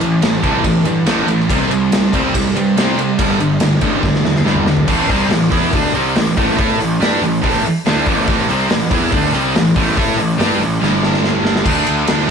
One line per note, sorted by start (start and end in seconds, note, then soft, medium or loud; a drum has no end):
0.00 0.19 A1 medium
0.00 0.20 A2 medium
0.00 1.27 A2 medium
0.00 1.27 E3 loud
0.00 0.21 E3 medium
0.00 1.26 A3 loud
0.00 ride medium
0.22 0.40 A1 medium
0.22 0.41 A2 medium
0.22 0.42 E3 medium
0.22 snare loud
0.22 ride medium
0.42 0.60 C2 loud
0.42 0.63 A2 medium
0.42 0.63 E3 medium
0.42 0.64 A3 medium
0.42 kick medium
0.42 ride medium
0.64 0.81 A1 medium
0.64 0.84 A2 medium
0.64 0.84 E3 medium
0.64 kick medium
0.64 ride medium
0.85 1.02 G2 medium
0.85 1.05 A2 medium
0.85 1.05 E3 medium
0.85 ride medium
1.06 1.23 A1 medium
1.06 1.27 A2 medium
1.06 1.27 E3 medium
1.06 1.28 A3 loud
1.06 snare loud
1.06 ride loud
1.27 1.45 A1 medium
1.27 1.47 A2 medium
1.27 1.48 E3 medium
1.27 1.48 A3 medium
1.27 ride medium
1.40 snare soft
1.49 1.66 C2 medium
1.49 1.69 C3 loud
1.49 1.70 G3 medium
1.49 1.70 C4 loud
1.49 kick loud
1.49 ride loud
1.71 1.88 C2 medium
1.71 1.90 C3 medium
1.71 1.90 G3 medium
1.71 ride medium
1.92 2.09 C2 medium
1.92 2.12 C3 medium
1.92 2.12 G3 medium
1.92 snare loud
1.92 ride loud
2.13 2.29 C2 medium
2.13 2.33 C3 loud
2.13 2.34 G3 medium
2.13 2.34 C4 medium
2.13 kick medium
2.13 ride medium
2.34 2.51 C2 medium
2.34 2.54 C3 medium
2.34 2.54 G3 medium
2.34 kick medium
2.34 ride loud
2.55 2.72 G2 medium
2.55 2.75 C3 medium
2.55 2.75 G3 medium
2.55 ride medium
2.77 2.97 C3 medium
2.77 3.10 C3 medium
2.77 2.97 G3 loud
2.77 2.97 C4 loud
2.77 snare loud
2.77 ride loud
2.97 3.17 C3 medium
2.97 3.18 G3 medium
2.97 3.17 C4 medium
2.97 ride medium
3.19 3.35 G1 medium
3.19 3.38 G2 medium
3.19 3.39 D3 loud
3.19 3.40 G3 loud
3.19 kick loud
3.19 ride loud
3.40 3.57 G1 medium
3.40 3.59 G2 medium
3.40 3.59 D3 medium
3.40 ride medium
3.60 3.78 G1 medium
3.60 3.80 G2 medium
3.60 3.81 D3 medium
3.60 snare loud
3.60 ride medium
3.81 3.99 A1 medium
3.81 4.01 G2 loud
3.81 4.02 D3 loud
3.81 4.03 G3 loud
3.81 kick medium
3.81 ride medium
4.03 4.20 G1 medium
4.03 4.23 G2 medium
4.03 4.23 D3 medium
4.03 kick medium
4.03 snare medium
4.15 snare medium
4.24 4.41 E2 medium
4.24 4.43 G2 medium
4.24 4.44 D3 medium
4.24 snare medium
4.36 snare medium
4.45 4.62 G1 medium
4.45 4.65 G2 loud
4.45 4.65 D3 medium
4.45 4.66 G3 loud
4.45 snare medium
4.55 mid tom medium
4.66 4.83 G1 medium
4.66 4.86 G2 medium
4.66 4.86 D3 medium
4.66 4.87 G3 medium
4.66 snare loud
4.77 floor tom medium
4.88 5.08 A1 medium
4.88 5.09 A2 loud
4.88 5.09 E3 loud
4.88 5.09 A3 loud
4.88 kick loud
4.88 crash loud
5.09 5.30 C2 medium
5.09 5.30 C3 medium
5.09 5.30 G3 medium
5.09 5.31 C4 loud
5.09 kick loud
5.09 open hi-hat medium
5.30 5.51 A1 medium
5.30 5.48 A2 medium
5.30 5.48 E3 medium
5.30 snare loud
5.30 open hi-hat medium
5.50 5.72 E2 loud
5.50 5.72 E3 loud
5.50 5.72 B3 loud
5.50 5.73 E4 medium
5.50 kick loud
5.50 open hi-hat medium
5.72 5.93 D2 medium
5.72 5.94 D3 loud
5.72 5.94 A3 loud
5.72 5.94 D4 loud
5.72 kick loud
5.72 open hi-hat medium
5.94 6.15 C2 loud
5.94 6.15 C3 loud
5.94 6.15 G3 loud
5.94 6.15 C4 loud
5.94 open hi-hat medium
6.16 6.36 A1 medium
6.16 6.33 A2 medium
6.16 6.34 E3 medium
6.16 snare loud
6.16 open hi-hat medium
6.37 6.57 A1 medium
6.37 6.58 A2 medium
6.37 6.57 E3 loud
6.37 6.56 A3 medium
6.37 kick loud
6.37 open hi-hat medium
6.49 snare soft
6.58 6.78 A2 medium
6.58 6.79 A3 medium
6.58 6.79 E4 loud
6.58 6.79 A4 loud
6.58 kick loud
6.58 open hi-hat medium
6.79 7.00 A1 medium
6.79 6.97 A2 medium
6.79 6.97 E3 medium
6.79 open hi-hat medium
7.00 7.21 G2 medium
7.00 7.21 G3 medium
7.00 7.21 D4 loud
7.00 7.22 G4 loud
7.00 snare loud
7.00 open hi-hat medium
7.22 7.42 A1 medium
7.22 7.39 A2 medium
7.22 7.39 E3 medium
7.22 open hi-hat medium
7.42 7.63 A1 medium
7.42 7.63 A2 loud
7.42 7.64 E3 loud
7.42 7.64 A3 loud
7.42 kick loud
7.42 open hi-hat medium
7.64 muted distorted electric guitar stroke medium
7.64 muted overdriven electric guitar stroke medium
7.64 muted picked electric bass stroke soft
7.64 open hi-hat medium
7.86 8.06 D2 medium
7.86 8.06 D3 medium
7.86 8.06 A3 loud
7.86 8.07 D4 loud
7.86 snare loud
7.86 open hi-hat medium
8.06 8.27 A1 medium
8.06 8.26 A2 medium
8.06 8.27 E3 loud
8.06 8.27 A3 medium
8.06 kick loud
8.06 open hi-hat medium
8.18 snare soft
8.27 8.48 A1 loud
8.27 8.48 A2 loud
8.27 8.49 E3 medium
8.27 8.49 A3 loud
8.27 kick loud
8.27 open hi-hat medium
8.49 8.69 C2 medium
8.49 8.69 C3 medium
8.49 8.70 G3 medium
8.49 8.70 C4 loud
8.49 open hi-hat medium
8.70 8.90 A1 medium
8.70 8.87 A2 medium
8.70 8.87 E3 medium
8.70 snare loud
8.70 open hi-hat medium
8.91 9.11 E2 loud
8.91 9.12 E3 medium
8.91 9.12 B3 loud
8.91 9.12 E4 loud
8.91 kick loud
8.91 open hi-hat medium
9.12 9.32 D2 medium
9.12 9.32 D3 medium
9.12 9.33 A3 medium
9.12 9.33 D4 loud
9.12 kick loud
9.12 open hi-hat medium
9.33 9.54 C2 medium
9.33 9.54 C3 loud
9.33 9.54 G3 loud
9.33 9.55 C4 loud
9.33 open hi-hat medium
9.55 9.75 A1 medium
9.55 9.72 A2 medium
9.55 9.72 E3 medium
9.55 snare loud
9.55 open hi-hat medium
9.76 9.96 A1 medium
9.76 9.97 A2 medium
9.76 9.96 E3 medium
9.76 9.96 A3 loud
9.76 kick loud
9.76 open hi-hat medium
9.97 10.17 A2 loud
9.97 10.18 A3 medium
9.97 10.18 E4 loud
9.97 10.18 A4 loud
9.97 kick loud
9.97 open hi-hat medium
10.18 10.38 A1 medium
10.18 10.35 A2 medium
10.18 10.35 E3 medium
10.18 open hi-hat medium
10.39 10.59 G2 medium
10.39 10.60 G3 medium
10.39 10.60 D4 medium
10.39 10.61 G4 loud
10.39 snare loud
10.39 open hi-hat medium
10.60 10.80 A1 medium
10.60 10.78 A2 medium
10.60 10.78 E3 medium
10.60 open hi-hat medium
10.81 11.62 G1 medium
10.81 11.65 G2 medium
10.81 11.63 D3 medium
10.81 11.66 G3 loud
10.81 snare medium
11.03 snare medium
11.14 snare medium
11.24 snare medium
11.45 snare loud
11.56 snare loud
11.64 11.82 D2 loud
11.64 12.27 D3 medium
11.64 12.28 A3 medium
11.64 12.26 D4 loud
11.64 kick loud
11.64 crash loud
11.87 12.04 D2 medium
11.87 ride medium
12.07 12.25 D2 medium
12.07 snare loud
12.07 ride loud
12.20 snare soft
12.27 12.30 D4 medium